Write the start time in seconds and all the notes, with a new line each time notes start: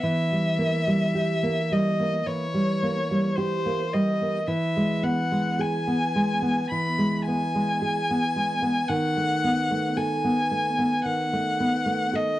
0.03 E3 E5
0.32 G3
0.58 A#3
0.87 G3
1.15 G4
1.43 A#3
1.72 G3 D#5
2.00 A#3
2.27 E3 C#5
2.54 G3
2.83 A#3
3.11 G3
3.36 G4 C5
3.66 A#3
3.93 G3 D#5
4.22 A#3
4.47 E3 E5
4.77 G#3
5.03 B3 F#5
5.32 G#3
5.59 G#4 G#5
5.88 B3
6.16 G#3
6.42 B3
6.71 E3 B5
6.98 G#3
7.27 B3 G#5
7.55 G#3
7.82 G#4
8.10 B3
8.36 G#3
8.62 B3
8.88 D#3 F#5
9.17 A3
9.44 B3
9.71 A3
9.96 A4 G#5
10.24 B3
10.51 A3
10.79 B3
11.05 D#3 F#5
11.33 A3
11.60 B3
11.86 A3
12.13 A4 D#5